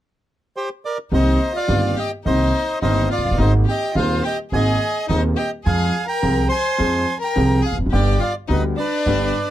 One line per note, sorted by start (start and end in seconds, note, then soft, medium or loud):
0.57 0.69 G4 medium
0.57 0.69 C5 medium
0.85 0.98 A#4 medium
0.85 0.98 D5 medium
1.12 1.36 C2 medium
1.12 1.36 C3 medium
1.12 1.36 D#3 medium
1.12 1.36 A#3 medium
1.12 1.36 C4 medium
1.12 1.52 D#4 medium
1.12 1.36 G4 medium
1.12 1.53 C5 medium
1.12 1.57 D#5 medium
1.54 1.94 F4 medium
1.54 1.96 D5 medium
1.54 1.99 F5 medium
1.68 1.92 G1 medium
1.68 1.93 G1 medium
1.68 1.92 G2 medium
1.68 1.92 D#3 medium
1.68 1.93 A#3 medium
1.68 1.92 C4 medium
1.68 1.93 G4 medium
1.96 2.09 G4 medium
1.96 2.12 D#5 medium
1.96 2.11 G5 medium
2.24 2.50 C2 medium
2.24 2.50 C3 medium
2.24 2.49 D#3 medium
2.24 2.50 A#3 medium
2.24 2.50 C4 medium
2.24 2.78 D#4 medium
2.24 2.50 G4 medium
2.24 2.79 C5 medium
2.24 2.78 D#5 medium
2.81 3.06 G1 medium
2.81 3.06 G2 medium
2.81 3.06 D#3 medium
2.81 3.06 A#3 medium
2.81 3.06 C4 medium
2.81 3.08 D#4 medium
2.81 3.06 G4 medium
2.81 3.09 C5 medium
2.81 3.09 D#5 medium
3.10 3.37 F4 medium
3.10 3.38 D5 medium
3.10 3.40 F5 medium
3.18 3.25 F1 soft
3.18 3.24 F1 soft
3.25 3.31 F#1 medium
3.25 3.32 F#1 medium
3.31 3.38 G1 medium
3.31 3.40 G1 medium
3.37 3.63 G#1 medium
3.37 3.63 G#2 medium
3.37 3.63 D#3 medium
3.37 3.63 A#3 medium
3.37 3.63 C4 medium
3.37 3.51 D#4 medium
3.37 3.63 G#4 medium
3.37 3.52 D#5 medium
3.42 3.54 C5 medium
3.65 3.93 G4 medium
3.65 3.95 G5 medium
3.70 3.95 D#5 medium
3.94 4.20 D#1 medium
3.94 4.19 D#2 medium
3.94 4.20 D#2 medium
3.94 4.20 D#3 medium
3.94 4.20 A#3 medium
3.94 4.20 C4 medium
3.94 4.21 F4 medium
3.94 4.20 G#4 medium
3.94 4.23 F5 medium
3.99 4.24 C5 medium
4.23 4.36 G4 medium
4.23 4.37 G5 medium
4.27 4.39 D#5 medium
4.51 4.76 G#1 medium
4.51 4.77 G#1 medium
4.51 4.76 G#2 medium
4.51 4.76 D#3 medium
4.51 4.76 A#3 medium
4.51 4.76 C4 medium
4.51 5.05 G#4 medium
4.51 4.77 G#4 medium
4.51 5.07 D#5 medium
4.51 5.06 G#5 medium
5.08 5.33 D#1 medium
5.08 5.33 D#2 medium
5.08 5.34 D#2 medium
5.08 5.33 D#3 medium
5.08 5.33 A#3 medium
5.08 5.34 C4 medium
5.08 5.21 D#4 medium
5.08 5.34 G#4 medium
5.08 5.24 C5 medium
5.08 5.22 D#5 medium
5.36 5.49 G4 medium
5.36 5.51 D#5 medium
5.36 5.50 G5 medium
5.65 5.90 F2 medium
5.65 5.90 F3 medium
5.65 5.90 G#3 medium
5.65 5.90 C4 medium
5.65 6.05 G#4 medium
5.65 5.90 G#4 medium
5.65 6.07 F5 medium
5.65 6.05 G#5 medium
6.06 6.47 A#4 medium
6.06 6.48 G5 medium
6.06 6.47 A#5 medium
6.22 6.46 C2 medium
6.22 6.47 C2 medium
6.22 6.46 C3 medium
6.22 6.46 F3 medium
6.22 6.46 G#3 medium
6.22 6.46 C4 medium
6.22 6.47 G#4 medium
6.48 7.16 C5 medium
6.48 7.18 G#5 medium
6.48 7.17 C6 loud
6.78 7.03 F2 medium
6.78 7.03 F3 medium
6.78 7.03 G#3 medium
6.78 7.03 C4 medium
6.78 7.03 G#4 medium
7.20 7.60 A#4 medium
7.20 7.61 A#5 medium
7.24 7.63 G5 medium
7.36 7.60 C2 medium
7.36 7.60 C3 medium
7.36 7.60 F3 medium
7.36 7.60 G#3 medium
7.36 7.60 C4 medium
7.36 7.60 G#4 medium
7.62 7.75 G#4 medium
7.62 7.78 F5 medium
7.62 7.77 G#5 medium
7.72 7.78 E1 soft
7.72 7.79 E2 soft
7.78 7.85 F1 medium
7.78 7.86 F2 medium
7.86 7.93 F#1 medium
7.86 7.93 F#2 medium
7.91 8.16 G1 medium
7.91 8.17 G1 medium
7.91 8.16 G2 medium
7.91 8.16 D3 medium
7.91 8.16 G3 medium
7.91 8.16 B3 medium
7.91 8.18 G4 medium
7.91 8.17 G4 medium
7.91 8.20 D5 medium
7.91 8.22 G5 medium
8.19 8.33 F4 medium
8.19 8.35 D5 medium
8.19 8.33 F5 medium
8.48 8.73 D2 medium
8.48 8.74 D2 medium
8.48 8.74 D3 medium
8.48 8.74 G3 medium
8.48 8.74 B3 medium
8.48 8.61 D#4 medium
8.48 8.74 G4 medium
8.48 8.62 D#5 medium
8.52 8.64 B4 medium
8.77 9.50 D4 medium
8.77 9.50 B4 medium
8.77 9.50 D5 medium
9.06 9.30 G1 medium
9.06 9.31 G1 medium
9.06 9.31 G2 medium
9.06 9.31 D3 medium
9.06 9.30 G3 medium
9.06 9.31 B3 medium
9.06 9.31 G4 medium